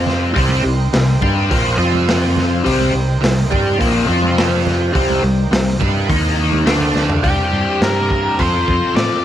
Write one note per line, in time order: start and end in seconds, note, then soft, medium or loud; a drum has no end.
0.00 0.59 C2 medium
0.00 0.32 F2 medium
0.00 1.22 G2 medium
0.00 1.83 C3 medium
0.00 0.33 F3 medium
0.00 0.34 C4 medium
0.00 0.35 C4 medium
0.00 0.34 F4 medium
0.00 0.35 F5 medium
0.00 6.06 C6 medium
0.07 snare soft
0.07 low conga medium
0.34 0.63 C2 medium
0.34 0.62 C3 loud
0.34 0.63 G3 loud
0.34 0.63 C4 loud
0.34 1.78 D#4 medium
0.34 1.78 A#4 medium
0.34 1.77 G5 medium
0.34 kick loud
0.34 open hi-hat medium
0.49 high conga medium
0.60 3.06 C2 medium
0.60 0.86 C3 medium
0.60 0.87 G3 medium
0.65 0.91 C2 medium
0.93 1.20 C2 medium
0.93 1.16 C3 medium
0.93 1.16 G3 medium
0.93 snare loud
0.93 open hi-hat medium
1.21 3.67 G2 medium
1.21 1.48 G2 medium
1.21 1.49 G3 medium
1.21 1.49 D4 medium
1.21 1.50 G4 medium
1.21 kick loud
1.21 low conga medium
1.50 1.77 A#1 medium
1.50 1.78 A#2 medium
1.50 1.77 F3 medium
1.50 1.78 A#3 loud
1.50 kick loud
1.50 open hi-hat medium
1.77 2.60 F2 medium
1.77 2.64 F3 medium
1.77 2.64 C4 loud
1.77 2.64 C4 medium
1.77 2.64 F4 loud
1.77 2.64 F4 medium
1.77 2.64 F5 medium
1.83 2.47 C3 medium
1.94 high conga medium
2.09 snare loud
2.09 open hi-hat medium
2.37 snare soft
2.37 low conga medium
2.47 4.31 C3 medium
2.64 2.92 C2 medium
2.64 2.92 C3 medium
2.64 2.93 G3 medium
2.64 2.93 C4 loud
2.64 4.07 D#4 medium
2.64 4.07 A#4 medium
2.64 4.08 G5 medium
2.64 kick loud
2.64 open hi-hat medium
2.81 high conga medium
2.93 3.20 C2 medium
2.93 3.16 C3 medium
2.93 3.17 G3 medium
3.06 5.54 C2 medium
3.21 3.49 C2 medium
3.21 3.45 C3 medium
3.21 3.45 G3 medium
3.21 snare loud
3.21 open hi-hat medium
3.51 3.78 G2 medium
3.51 3.78 G3 loud
3.51 3.79 D4 loud
3.51 3.79 G4 loud
3.51 kick loud
3.51 low conga medium
3.67 6.13 G2 medium
3.78 4.07 A#1 loud
3.78 4.06 A#2 medium
3.78 4.05 F3 medium
3.78 4.07 A#3 loud
3.78 kick loud
3.78 open hi-hat medium
4.07 4.90 F2 medium
4.07 4.92 F3 medium
4.07 4.93 C4 loud
4.07 4.94 C4 medium
4.07 4.93 F4 loud
4.07 4.94 F4 medium
4.07 4.94 F5 medium
4.23 high conga medium
4.31 4.92 C3 medium
4.38 snare loud
4.38 open hi-hat medium
4.67 snare soft
4.67 low conga medium
4.92 5.21 C2 medium
4.92 6.74 C3 medium
4.92 5.21 C3 loud
4.92 5.22 G3 loud
4.92 5.22 C4 loud
4.92 6.65 A#4 medium
4.92 6.09 G5 medium
4.92 kick loud
4.92 open hi-hat medium
4.96 6.66 D#4 medium
5.10 high conga medium
5.22 5.49 C2 medium
5.22 5.46 C3 medium
5.22 5.46 G3 medium
5.51 5.78 C2 medium
5.51 9.25 C2 medium
5.51 5.74 C3 medium
5.51 5.75 G3 medium
5.51 snare loud
5.51 open hi-hat medium
5.79 6.07 G2 medium
5.79 6.08 G3 medium
5.79 6.08 D4 loud
5.79 6.08 G4 loud
5.79 kick loud
5.79 low conga medium
6.08 6.63 D#2 loud
6.08 6.65 D#3 medium
6.08 6.65 A#3 medium
6.08 6.66 D#4 loud
6.08 6.66 A#5 medium
6.08 6.66 D#6 medium
6.08 kick loud
6.08 open hi-hat medium
6.08 high conga medium
6.13 9.25 G2 medium
6.52 high conga medium
6.66 7.20 D2 medium
6.66 7.22 D3 medium
6.66 7.23 A3 medium
6.66 7.23 D4 loud
6.66 7.24 D4 medium
6.66 7.24 A4 medium
6.66 7.24 A5 medium
6.66 7.24 D6 medium
6.66 snare loud
6.66 open hi-hat medium
6.74 9.25 C3 medium
6.80 low conga medium
6.94 snare medium
6.94 low conga medium
7.10 floor tom medium
7.23 7.36 C2 medium
7.23 8.37 C3 medium
7.23 8.37 G3 medium
7.23 8.38 C4 medium
7.23 8.38 D4 medium
7.23 7.83 G4 medium
7.23 8.38 G4 medium
7.23 kick loud
7.23 open hi-hat soft
7.52 7.65 G2 medium
7.81 8.30 G2 medium
7.81 8.41 A#4 medium
7.81 snare loud
7.81 open hi-hat soft
8.10 kick medium
8.38 8.63 F2 loud
8.38 9.23 F3 medium
8.38 9.24 C4 medium
8.38 9.24 F4 medium
8.38 9.25 A4 medium
8.38 8.96 C5 medium
8.38 kick medium
8.38 open hi-hat soft
8.67 8.80 F2 medium
8.67 kick medium
8.96 9.08 A2 medium
8.96 9.25 D5 medium
8.96 snare loud
8.96 open hi-hat soft